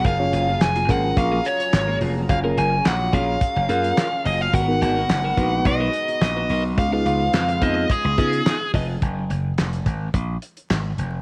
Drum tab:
HH |x-x-xxx-x-xxx-o-|x-x-x-x-x-xxx-o-|x-x-x-x-x-xxx-o-|x-x-xxx-x-xxx-o-|
CP |----x-------x---|----x-------x---|----x-------x---|----x-------x---|
SD |----o-------o---|----o-------o---|----o-------o---|----o-------o---|
BD |o-----o-o-------|o-----o-o-------|o-----o-o-------|o-----o-o-o---o-|

HH |x-x-xxx-x-xxx-x-|
CP |----x-------x---|
SD |----o-------o---|
BD |o-----o-o-------|